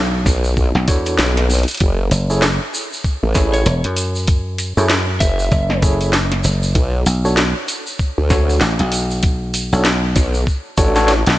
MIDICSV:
0, 0, Header, 1, 6, 480
1, 0, Start_track
1, 0, Tempo, 618557
1, 1401, Time_signature, 4, 2, 24, 8
1, 8835, End_track
2, 0, Start_track
2, 0, Title_t, "Lead electric guitar"
2, 0, Program_c, 0, 29
2, 2744, Note_on_c, 0, 73, 93
2, 2898, Note_off_c, 0, 73, 0
2, 4038, Note_on_c, 0, 76, 97
2, 4519, Note_off_c, 0, 76, 0
2, 8835, End_track
3, 0, Start_track
3, 0, Title_t, "Tine electric piano"
3, 0, Program_c, 1, 4
3, 683, Note_on_c, 1, 62, 79
3, 683, Note_on_c, 1, 66, 74
3, 683, Note_on_c, 1, 69, 75
3, 683, Note_on_c, 1, 73, 90
3, 912, Note_off_c, 1, 62, 0
3, 912, Note_off_c, 1, 66, 0
3, 912, Note_off_c, 1, 69, 0
3, 912, Note_off_c, 1, 73, 0
3, 1784, Note_on_c, 1, 69, 69
3, 1786, Note_on_c, 1, 64, 76
3, 1786, Note_on_c, 1, 68, 71
3, 1786, Note_on_c, 1, 73, 83
3, 1907, Note_off_c, 1, 69, 0
3, 1908, Note_off_c, 1, 64, 0
3, 1908, Note_off_c, 1, 68, 0
3, 1908, Note_off_c, 1, 73, 0
3, 2600, Note_on_c, 1, 64, 81
3, 2600, Note_on_c, 1, 68, 73
3, 2600, Note_on_c, 1, 73, 92
3, 2601, Note_on_c, 1, 69, 74
3, 2830, Note_off_c, 1, 64, 0
3, 2830, Note_off_c, 1, 68, 0
3, 2830, Note_off_c, 1, 69, 0
3, 2830, Note_off_c, 1, 73, 0
3, 3702, Note_on_c, 1, 69, 72
3, 3703, Note_on_c, 1, 73, 86
3, 3704, Note_on_c, 1, 64, 75
3, 3704, Note_on_c, 1, 68, 71
3, 3826, Note_off_c, 1, 69, 0
3, 3827, Note_off_c, 1, 64, 0
3, 3827, Note_off_c, 1, 68, 0
3, 3827, Note_off_c, 1, 73, 0
3, 4519, Note_on_c, 1, 68, 77
3, 4520, Note_on_c, 1, 64, 83
3, 4520, Note_on_c, 1, 69, 76
3, 4520, Note_on_c, 1, 73, 89
3, 4750, Note_off_c, 1, 64, 0
3, 4750, Note_off_c, 1, 68, 0
3, 4750, Note_off_c, 1, 69, 0
3, 4750, Note_off_c, 1, 73, 0
3, 5624, Note_on_c, 1, 66, 71
3, 5624, Note_on_c, 1, 69, 68
3, 5625, Note_on_c, 1, 62, 78
3, 5625, Note_on_c, 1, 73, 83
3, 5747, Note_off_c, 1, 66, 0
3, 5747, Note_off_c, 1, 69, 0
3, 5748, Note_off_c, 1, 62, 0
3, 5748, Note_off_c, 1, 73, 0
3, 6442, Note_on_c, 1, 62, 82
3, 6442, Note_on_c, 1, 73, 92
3, 6443, Note_on_c, 1, 66, 76
3, 6443, Note_on_c, 1, 69, 75
3, 6671, Note_off_c, 1, 62, 0
3, 6671, Note_off_c, 1, 73, 0
3, 6672, Note_off_c, 1, 66, 0
3, 6672, Note_off_c, 1, 69, 0
3, 7549, Note_on_c, 1, 62, 79
3, 7549, Note_on_c, 1, 66, 70
3, 7549, Note_on_c, 1, 69, 73
3, 7550, Note_on_c, 1, 73, 82
3, 7670, Note_off_c, 1, 62, 0
3, 7670, Note_off_c, 1, 66, 0
3, 7670, Note_off_c, 1, 69, 0
3, 7670, Note_off_c, 1, 73, 0
3, 8362, Note_on_c, 1, 66, 92
3, 8362, Note_on_c, 1, 73, 111
3, 8363, Note_on_c, 1, 62, 104
3, 8364, Note_on_c, 1, 69, 89
3, 8483, Note_off_c, 1, 62, 0
3, 8483, Note_off_c, 1, 66, 0
3, 8483, Note_off_c, 1, 73, 0
3, 8484, Note_off_c, 1, 69, 0
3, 8503, Note_on_c, 1, 69, 90
3, 8504, Note_on_c, 1, 62, 102
3, 8504, Note_on_c, 1, 66, 96
3, 8504, Note_on_c, 1, 73, 113
3, 8627, Note_off_c, 1, 62, 0
3, 8627, Note_off_c, 1, 66, 0
3, 8627, Note_off_c, 1, 69, 0
3, 8627, Note_off_c, 1, 73, 0
3, 8835, End_track
4, 0, Start_track
4, 0, Title_t, "Slap bass"
4, 0, Program_c, 2, 36
4, 0, Note_on_c, 2, 35, 103
4, 185, Note_off_c, 2, 35, 0
4, 580, Note_on_c, 2, 35, 100
4, 663, Note_off_c, 2, 35, 0
4, 682, Note_on_c, 2, 40, 98
4, 906, Note_off_c, 2, 40, 0
4, 1638, Note_on_c, 2, 30, 106
4, 2000, Note_off_c, 2, 30, 0
4, 2839, Note_on_c, 2, 28, 96
4, 2960, Note_off_c, 2, 28, 0
4, 2985, Note_on_c, 2, 42, 95
4, 3681, Note_off_c, 2, 42, 0
4, 3703, Note_on_c, 2, 42, 98
4, 4025, Note_off_c, 2, 42, 0
4, 4280, Note_on_c, 2, 30, 95
4, 4985, Note_off_c, 2, 30, 0
4, 5001, Note_on_c, 2, 30, 93
4, 5225, Note_off_c, 2, 30, 0
4, 5480, Note_on_c, 2, 35, 103
4, 5840, Note_off_c, 2, 35, 0
4, 6682, Note_on_c, 2, 33, 97
4, 6801, Note_off_c, 2, 33, 0
4, 6825, Note_on_c, 2, 35, 100
4, 7522, Note_off_c, 2, 35, 0
4, 7547, Note_on_c, 2, 35, 99
4, 7867, Note_off_c, 2, 35, 0
4, 8745, Note_on_c, 2, 35, 101
4, 8835, Note_off_c, 2, 35, 0
4, 8835, End_track
5, 0, Start_track
5, 0, Title_t, "Wobble bass"
5, 0, Program_c, 3, 39
5, 202, Note_on_c, 3, 35, 97
5, 426, Note_off_c, 3, 35, 0
5, 442, Note_on_c, 3, 35, 91
5, 561, Note_off_c, 3, 35, 0
5, 924, Note_on_c, 3, 35, 102
5, 1282, Note_off_c, 3, 35, 0
5, 1403, Note_on_c, 3, 30, 95
5, 1626, Note_off_c, 3, 30, 0
5, 2507, Note_on_c, 3, 33, 102
5, 2827, Note_off_c, 3, 33, 0
5, 4043, Note_on_c, 3, 30, 92
5, 4266, Note_off_c, 3, 30, 0
5, 5240, Note_on_c, 3, 35, 96
5, 5465, Note_off_c, 3, 35, 0
5, 6348, Note_on_c, 3, 38, 103
5, 6667, Note_off_c, 3, 38, 0
5, 7884, Note_on_c, 3, 35, 98
5, 8107, Note_off_c, 3, 35, 0
5, 8363, Note_on_c, 3, 33, 100
5, 8722, Note_off_c, 3, 33, 0
5, 8835, End_track
6, 0, Start_track
6, 0, Title_t, "Drums"
6, 202, Note_on_c, 9, 36, 112
6, 202, Note_on_c, 9, 40, 37
6, 204, Note_on_c, 9, 82, 103
6, 280, Note_off_c, 9, 36, 0
6, 280, Note_off_c, 9, 40, 0
6, 282, Note_off_c, 9, 82, 0
6, 342, Note_on_c, 9, 82, 54
6, 419, Note_off_c, 9, 82, 0
6, 440, Note_on_c, 9, 82, 39
6, 442, Note_on_c, 9, 36, 65
6, 518, Note_off_c, 9, 82, 0
6, 520, Note_off_c, 9, 36, 0
6, 586, Note_on_c, 9, 40, 49
6, 663, Note_off_c, 9, 40, 0
6, 680, Note_on_c, 9, 42, 64
6, 683, Note_on_c, 9, 36, 109
6, 688, Note_on_c, 9, 82, 97
6, 758, Note_off_c, 9, 42, 0
6, 760, Note_off_c, 9, 36, 0
6, 765, Note_off_c, 9, 82, 0
6, 821, Note_on_c, 9, 82, 59
6, 825, Note_on_c, 9, 42, 36
6, 899, Note_off_c, 9, 82, 0
6, 903, Note_off_c, 9, 42, 0
6, 921, Note_on_c, 9, 38, 119
6, 921, Note_on_c, 9, 42, 76
6, 924, Note_on_c, 9, 82, 44
6, 998, Note_off_c, 9, 38, 0
6, 998, Note_off_c, 9, 42, 0
6, 1002, Note_off_c, 9, 82, 0
6, 1065, Note_on_c, 9, 40, 38
6, 1065, Note_on_c, 9, 42, 61
6, 1143, Note_off_c, 9, 40, 0
6, 1143, Note_off_c, 9, 42, 0
6, 1161, Note_on_c, 9, 42, 29
6, 1166, Note_on_c, 9, 82, 86
6, 1198, Note_off_c, 9, 42, 0
6, 1198, Note_on_c, 9, 42, 33
6, 1232, Note_off_c, 9, 42, 0
6, 1232, Note_on_c, 9, 42, 37
6, 1243, Note_off_c, 9, 82, 0
6, 1268, Note_off_c, 9, 42, 0
6, 1268, Note_on_c, 9, 42, 42
6, 1302, Note_on_c, 9, 82, 62
6, 1304, Note_off_c, 9, 42, 0
6, 1304, Note_on_c, 9, 42, 45
6, 1329, Note_off_c, 9, 42, 0
6, 1329, Note_on_c, 9, 42, 51
6, 1354, Note_off_c, 9, 42, 0
6, 1354, Note_on_c, 9, 42, 56
6, 1377, Note_off_c, 9, 42, 0
6, 1377, Note_on_c, 9, 42, 60
6, 1379, Note_off_c, 9, 82, 0
6, 1397, Note_on_c, 9, 82, 36
6, 1399, Note_off_c, 9, 42, 0
6, 1399, Note_on_c, 9, 42, 79
6, 1403, Note_on_c, 9, 36, 122
6, 1475, Note_off_c, 9, 82, 0
6, 1477, Note_off_c, 9, 42, 0
6, 1480, Note_off_c, 9, 36, 0
6, 1639, Note_on_c, 9, 42, 63
6, 1645, Note_on_c, 9, 82, 87
6, 1716, Note_off_c, 9, 42, 0
6, 1723, Note_off_c, 9, 82, 0
6, 1785, Note_on_c, 9, 82, 52
6, 1862, Note_off_c, 9, 82, 0
6, 1879, Note_on_c, 9, 38, 124
6, 1879, Note_on_c, 9, 42, 72
6, 1884, Note_on_c, 9, 82, 43
6, 1957, Note_off_c, 9, 38, 0
6, 1957, Note_off_c, 9, 42, 0
6, 1962, Note_off_c, 9, 82, 0
6, 2128, Note_on_c, 9, 82, 105
6, 2206, Note_off_c, 9, 82, 0
6, 2272, Note_on_c, 9, 82, 53
6, 2350, Note_off_c, 9, 82, 0
6, 2363, Note_on_c, 9, 36, 65
6, 2364, Note_on_c, 9, 82, 42
6, 2440, Note_off_c, 9, 36, 0
6, 2442, Note_off_c, 9, 82, 0
6, 2598, Note_on_c, 9, 82, 97
6, 2600, Note_on_c, 9, 40, 51
6, 2600, Note_on_c, 9, 42, 62
6, 2603, Note_on_c, 9, 36, 105
6, 2675, Note_off_c, 9, 82, 0
6, 2678, Note_off_c, 9, 40, 0
6, 2678, Note_off_c, 9, 42, 0
6, 2681, Note_off_c, 9, 36, 0
6, 2743, Note_on_c, 9, 42, 36
6, 2743, Note_on_c, 9, 82, 52
6, 2821, Note_off_c, 9, 42, 0
6, 2821, Note_off_c, 9, 82, 0
6, 2836, Note_on_c, 9, 82, 38
6, 2840, Note_on_c, 9, 42, 71
6, 2913, Note_off_c, 9, 82, 0
6, 2917, Note_off_c, 9, 42, 0
6, 2981, Note_on_c, 9, 42, 59
6, 3059, Note_off_c, 9, 42, 0
6, 3077, Note_on_c, 9, 42, 61
6, 3080, Note_on_c, 9, 82, 89
6, 3154, Note_off_c, 9, 42, 0
6, 3158, Note_off_c, 9, 82, 0
6, 3223, Note_on_c, 9, 82, 52
6, 3300, Note_off_c, 9, 82, 0
6, 3317, Note_on_c, 9, 42, 78
6, 3319, Note_on_c, 9, 82, 37
6, 3322, Note_on_c, 9, 36, 122
6, 3395, Note_off_c, 9, 42, 0
6, 3397, Note_off_c, 9, 82, 0
6, 3400, Note_off_c, 9, 36, 0
6, 3558, Note_on_c, 9, 42, 64
6, 3561, Note_on_c, 9, 82, 84
6, 3635, Note_off_c, 9, 42, 0
6, 3639, Note_off_c, 9, 82, 0
6, 3704, Note_on_c, 9, 82, 52
6, 3782, Note_off_c, 9, 82, 0
6, 3799, Note_on_c, 9, 38, 113
6, 3799, Note_on_c, 9, 42, 79
6, 3803, Note_on_c, 9, 82, 39
6, 3877, Note_off_c, 9, 38, 0
6, 3877, Note_off_c, 9, 42, 0
6, 3881, Note_off_c, 9, 82, 0
6, 4039, Note_on_c, 9, 42, 66
6, 4042, Note_on_c, 9, 36, 104
6, 4042, Note_on_c, 9, 82, 94
6, 4117, Note_off_c, 9, 42, 0
6, 4119, Note_off_c, 9, 36, 0
6, 4120, Note_off_c, 9, 82, 0
6, 4184, Note_on_c, 9, 82, 57
6, 4262, Note_off_c, 9, 82, 0
6, 4278, Note_on_c, 9, 82, 38
6, 4281, Note_on_c, 9, 36, 59
6, 4356, Note_off_c, 9, 82, 0
6, 4359, Note_off_c, 9, 36, 0
6, 4422, Note_on_c, 9, 40, 54
6, 4500, Note_off_c, 9, 40, 0
6, 4519, Note_on_c, 9, 42, 60
6, 4521, Note_on_c, 9, 36, 107
6, 4528, Note_on_c, 9, 82, 91
6, 4597, Note_off_c, 9, 42, 0
6, 4599, Note_off_c, 9, 36, 0
6, 4605, Note_off_c, 9, 82, 0
6, 4662, Note_on_c, 9, 42, 35
6, 4666, Note_on_c, 9, 82, 47
6, 4739, Note_off_c, 9, 42, 0
6, 4744, Note_off_c, 9, 82, 0
6, 4758, Note_on_c, 9, 38, 108
6, 4758, Note_on_c, 9, 42, 73
6, 4761, Note_on_c, 9, 82, 40
6, 4836, Note_off_c, 9, 38, 0
6, 4836, Note_off_c, 9, 42, 0
6, 4838, Note_off_c, 9, 82, 0
6, 4902, Note_on_c, 9, 40, 40
6, 4902, Note_on_c, 9, 42, 57
6, 4979, Note_off_c, 9, 40, 0
6, 4979, Note_off_c, 9, 42, 0
6, 4996, Note_on_c, 9, 82, 84
6, 5000, Note_on_c, 9, 42, 62
6, 5074, Note_off_c, 9, 82, 0
6, 5078, Note_off_c, 9, 42, 0
6, 5144, Note_on_c, 9, 82, 54
6, 5221, Note_off_c, 9, 82, 0
6, 5239, Note_on_c, 9, 42, 82
6, 5241, Note_on_c, 9, 36, 121
6, 5243, Note_on_c, 9, 82, 40
6, 5317, Note_off_c, 9, 42, 0
6, 5319, Note_off_c, 9, 36, 0
6, 5321, Note_off_c, 9, 82, 0
6, 5480, Note_on_c, 9, 42, 67
6, 5480, Note_on_c, 9, 82, 94
6, 5558, Note_off_c, 9, 42, 0
6, 5558, Note_off_c, 9, 82, 0
6, 5626, Note_on_c, 9, 82, 47
6, 5703, Note_off_c, 9, 82, 0
6, 5716, Note_on_c, 9, 82, 37
6, 5720, Note_on_c, 9, 38, 111
6, 5720, Note_on_c, 9, 42, 80
6, 5793, Note_off_c, 9, 82, 0
6, 5798, Note_off_c, 9, 38, 0
6, 5798, Note_off_c, 9, 42, 0
6, 5962, Note_on_c, 9, 82, 84
6, 5963, Note_on_c, 9, 42, 66
6, 6040, Note_off_c, 9, 42, 0
6, 6040, Note_off_c, 9, 82, 0
6, 6104, Note_on_c, 9, 82, 51
6, 6181, Note_off_c, 9, 82, 0
6, 6200, Note_on_c, 9, 82, 37
6, 6203, Note_on_c, 9, 36, 62
6, 6278, Note_off_c, 9, 82, 0
6, 6281, Note_off_c, 9, 36, 0
6, 6441, Note_on_c, 9, 82, 79
6, 6442, Note_on_c, 9, 40, 55
6, 6444, Note_on_c, 9, 36, 103
6, 6518, Note_off_c, 9, 82, 0
6, 6520, Note_off_c, 9, 40, 0
6, 6522, Note_off_c, 9, 36, 0
6, 6593, Note_on_c, 9, 82, 51
6, 6671, Note_off_c, 9, 82, 0
6, 6680, Note_on_c, 9, 38, 114
6, 6680, Note_on_c, 9, 42, 76
6, 6684, Note_on_c, 9, 82, 42
6, 6758, Note_off_c, 9, 38, 0
6, 6758, Note_off_c, 9, 42, 0
6, 6762, Note_off_c, 9, 82, 0
6, 6823, Note_on_c, 9, 42, 60
6, 6901, Note_off_c, 9, 42, 0
6, 6920, Note_on_c, 9, 42, 64
6, 6932, Note_on_c, 9, 82, 88
6, 6997, Note_off_c, 9, 42, 0
6, 7009, Note_off_c, 9, 82, 0
6, 7065, Note_on_c, 9, 82, 50
6, 7143, Note_off_c, 9, 82, 0
6, 7160, Note_on_c, 9, 42, 89
6, 7165, Note_on_c, 9, 82, 37
6, 7166, Note_on_c, 9, 36, 116
6, 7238, Note_off_c, 9, 42, 0
6, 7243, Note_off_c, 9, 36, 0
6, 7243, Note_off_c, 9, 82, 0
6, 7402, Note_on_c, 9, 42, 69
6, 7406, Note_on_c, 9, 82, 89
6, 7479, Note_off_c, 9, 42, 0
6, 7484, Note_off_c, 9, 82, 0
6, 7551, Note_on_c, 9, 82, 51
6, 7628, Note_off_c, 9, 82, 0
6, 7642, Note_on_c, 9, 38, 113
6, 7642, Note_on_c, 9, 42, 81
6, 7645, Note_on_c, 9, 82, 38
6, 7719, Note_off_c, 9, 38, 0
6, 7719, Note_off_c, 9, 42, 0
6, 7722, Note_off_c, 9, 82, 0
6, 7882, Note_on_c, 9, 40, 38
6, 7882, Note_on_c, 9, 42, 69
6, 7884, Note_on_c, 9, 36, 103
6, 7885, Note_on_c, 9, 82, 93
6, 7959, Note_off_c, 9, 40, 0
6, 7959, Note_off_c, 9, 42, 0
6, 7962, Note_off_c, 9, 36, 0
6, 7963, Note_off_c, 9, 82, 0
6, 8024, Note_on_c, 9, 82, 54
6, 8101, Note_off_c, 9, 82, 0
6, 8124, Note_on_c, 9, 36, 65
6, 8130, Note_on_c, 9, 82, 38
6, 8202, Note_off_c, 9, 36, 0
6, 8208, Note_off_c, 9, 82, 0
6, 8362, Note_on_c, 9, 42, 68
6, 8362, Note_on_c, 9, 82, 91
6, 8363, Note_on_c, 9, 36, 104
6, 8439, Note_off_c, 9, 42, 0
6, 8439, Note_off_c, 9, 82, 0
6, 8441, Note_off_c, 9, 36, 0
6, 8502, Note_on_c, 9, 82, 53
6, 8504, Note_on_c, 9, 38, 37
6, 8504, Note_on_c, 9, 42, 37
6, 8580, Note_off_c, 9, 82, 0
6, 8581, Note_off_c, 9, 38, 0
6, 8581, Note_off_c, 9, 42, 0
6, 8599, Note_on_c, 9, 38, 67
6, 8599, Note_on_c, 9, 42, 83
6, 8603, Note_on_c, 9, 82, 41
6, 8677, Note_off_c, 9, 38, 0
6, 8677, Note_off_c, 9, 42, 0
6, 8680, Note_off_c, 9, 82, 0
6, 8742, Note_on_c, 9, 42, 64
6, 8760, Note_on_c, 9, 38, 85
6, 8820, Note_off_c, 9, 42, 0
6, 8835, Note_off_c, 9, 38, 0
6, 8835, End_track
0, 0, End_of_file